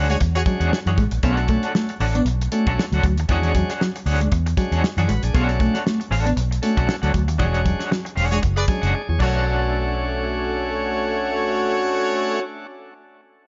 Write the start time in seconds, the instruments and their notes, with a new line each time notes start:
Already playing: fingered electric bass D2, clean electric guitar D4
0.09 clean electric guitar G#3, horn section F#4 G#4 C#5, muted clean electric guitar stroke, closed hi-hat
0.20 fingered electric bass E2, muted clean electric guitar stroke, kick, closed hi-hat
0.35 horn section F#4 G#4 C#5, muted clean electric guitar stroke, closed hi-hat
0.46 clean electric guitar F#3, tonewheel organ G#3 C#4 D4 F#4, kick, closed hi-hat
0.60 fingered electric bass E2, clean electric guitar D4 G#4 C#5 F#5, closed hi-hat
0.73 snare
0.86 fingered electric bass F#2, clean electric guitar E3 D4 G#4 C#5 F#5, closed hi-hat
0.98 fingered electric bass A1, clean electric guitar G#3, muted clean electric guitar stroke, kick, closed hi-hat
1.11 fingered electric bass A#1, muted clean electric guitar stroke, closed hi-hat
1.23 fingered electric bass B1, tonewheel organ A3 C#4 D4 E4, clean electric guitar B3 D4 A4 C#5 F#5, kick, closed hi-hat
1.30 tonewheel organ F#4
1.37 muted clean electric guitar stroke, closed hi-hat
1.48 clean electric guitar A3, muted clean electric guitar stroke, kick, closed hi-hat
1.63 clean electric guitar D4 A4 C#5 F#5, closed hi-hat
1.75 clean electric guitar A3, snare
1.89 muted clean electric guitar stroke, closed hi-hat
2.00 fingered electric bass A1, clean electric guitar D4 A4 C#5 F#5, muted clean electric guitar stroke, open hi-hat
2.15 clean electric guitar B3, muted clean electric guitar stroke, closed hi-hat
2.25 fingered electric bass B1, muted clean electric guitar stroke, closed hi-hat
2.41 muted clean electric guitar stroke, closed hi-hat
2.52 tonewheel organ A3 C#4 D4 F#4, clean electric guitar A3, closed hi-hat
2.66 fingered electric bass B1, clean electric guitar D4 A4 C#5 F#5, kick, closed hi-hat
2.79 muted clean electric guitar stroke, snare
2.92 fingered electric bass D2, clean electric guitar F#3 D4 A4 C#5 F#5, closed hi-hat
3.03 fingered electric bass D2, clean electric guitar F#3, muted clean electric guitar stroke, kick, closed hi-hat
3.17 fingered electric bass D#2, muted clean electric guitar stroke, closed hi-hat
3.28 fingered electric bass E2, clean electric guitar E3 D4 G#4 C#5 F#5, tonewheel organ G#3 C#4 D4 F#4, kick, closed hi-hat
3.43 muted clean electric guitar stroke, closed hi-hat
3.55 clean electric guitar F#3, muted clean electric guitar stroke, kick, closed hi-hat
3.69 clean electric guitar D4 G#4 C#5 F#5, snare, closed hi-hat
3.81 clean electric guitar F#3, muted clean electric guitar stroke, snare
3.96 muted clean electric guitar stroke, closed hi-hat
4.06 fingered electric bass D2, clean electric guitar D4 G#4 C#5 F#5, muted clean electric guitar stroke, open hi-hat
4.21 clean electric guitar G#3, muted clean electric guitar stroke, closed hi-hat
4.32 fingered electric bass E2, muted clean electric guitar stroke, kick, closed hi-hat
4.46 muted clean electric guitar stroke, closed hi-hat
4.57 clean electric guitar F#3, tonewheel organ G#3 C#4 D4 F#4, kick, closed hi-hat
4.72 fingered electric bass E2, clean electric guitar D4 G#4 C#5 F#5, closed hi-hat
4.83 muted clean electric guitar stroke, snare
4.97 fingered electric bass F#2, clean electric guitar E3 D4 G#4 C#5 F#5, tonewheel organ G#4 D5, closed hi-hat
5.08 fingered electric bass A1, clean electric guitar G#3, tonewheel organ F#4 B4, muted clean electric guitar stroke, closed hi-hat
5.23 fingered electric bass A#1, tonewheel organ D4 G#4, muted clean electric guitar stroke, closed hi-hat
5.34 fingered electric bass B1, tonewheel organ A3 C#4 D4 F#4, clean electric guitar B3 D4 A4 C#5 F#5, kick, closed hi-hat
5.49 muted clean electric guitar stroke, closed hi-hat
5.60 clean electric guitar A3, muted clean electric guitar stroke, kick, closed hi-hat
5.74 clean electric guitar D4 A4 C#5 F#5, snare, closed hi-hat
5.86 clean electric guitar A3, snare
6.00 muted clean electric guitar stroke, closed hi-hat
6.11 fingered electric bass A1, clean electric guitar D4 A4 C#5 F#5, muted clean electric guitar stroke, open hi-hat
6.25 clean electric guitar B3, muted clean electric guitar stroke, closed hi-hat
6.37 fingered electric bass B1, muted clean electric guitar stroke, closed hi-hat
6.51 muted clean electric guitar stroke, closed hi-hat
6.62 tonewheel organ A3 C#4 D4 F#4, clean electric guitar A3, closed hi-hat
6.77 fingered electric bass B1, clean electric guitar D4 A4 C#5 F#5, kick, closed hi-hat
6.88 muted clean electric guitar stroke, snare
7.02 fingered electric bass D2, clean electric guitar F#3 D4 A4 C#5 F#5, closed hi-hat
7.14 fingered electric bass D2, clean electric guitar F#3, kick, closed hi-hat
7.28 fingered electric bass D#2, muted clean electric guitar stroke, closed hi-hat
7.38 fingered electric bass E1, clean electric guitar E3 D4 G#4 C#5 F#5, tonewheel organ G3 C#4 D4 F#4, kick, closed hi-hat
7.46 tonewheel organ G#3
7.54 muted clean electric guitar stroke, closed hi-hat
7.65 clean electric guitar F#3, kick, closed hi-hat
7.80 clean electric guitar D4 G#4 C#5 F#5, snare, closed hi-hat
7.91 clean electric guitar F#3, muted clean electric guitar stroke, snare
8.05 muted clean electric guitar stroke, closed hi-hat
8.16 fingered electric bass E1, clean electric guitar D4 G#4 C#5 F#5, muted clean electric guitar stroke, open hi-hat
8.31 clean electric guitar G#3, horn section F#4 G#4 C#5, muted clean electric guitar stroke, closed hi-hat
8.42 fingered electric bass F#1, muted clean electric guitar stroke, kick, closed hi-hat
8.56 horn section G#4 B4 D5, muted clean electric guitar stroke, closed hi-hat
8.68 clean electric guitar F#3, tonewheel organ G#3 C#4 D4 G#4, kick, closed hi-hat
8.82 fingered electric bass F#1, clean electric guitar D4 G#4 C#5 F#5, closed hi-hat
8.94 tonewheel organ G#4 D5, muted clean electric guitar stroke
9.09 fingered electric bass E2, clean electric guitar E3, tonewheel organ G#4 C#5
9.19 fingered electric bass B1, clean electric guitar F#3 D4 A4 C#5, horn section A3 F#4 C#5, tonewheel organ A3 C#4 D4 F#4, kick, crash
9.24 clean electric guitar F#5